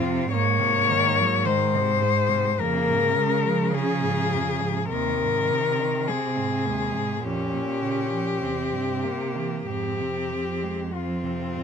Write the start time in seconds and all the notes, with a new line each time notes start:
Already playing: F2 C4 F4
0.01 C3
0.31 G#2 A#3 C#5
0.59 C3
0.89 D#3
1.19 F#3
1.45 D#3 G#3 C5
1.74 C3
2.02 G#2
2.29 C3
2.58 F2 C#3 A#3 A#4
2.88 G#2
3.15 C#3 G#3
3.45 F3
3.73 C#3 F3 G#4
4.03 G#2
4.32 F2
4.61 G#2
4.89 D#2 C3 D#3 A#4
5.22 G#2
5.51 C3
5.81 D#3
6.08 C3 C4 G#4
6.38 G#2
6.67 D#2 G#3
6.95 G#2
7.23 F2 A#2 C#4 G4
7.52 A#2
7.82 C#3
8.11 F3
8.41 E2 C3 C4
8.72 G2
9.03 C3 A#3
9.36 E3
9.65 F2 G#2 C4 G4
10.00 C3
10.31 F3
10.63 G#3
10.92 F3 C4 F4
11.24 C3
11.56 G#2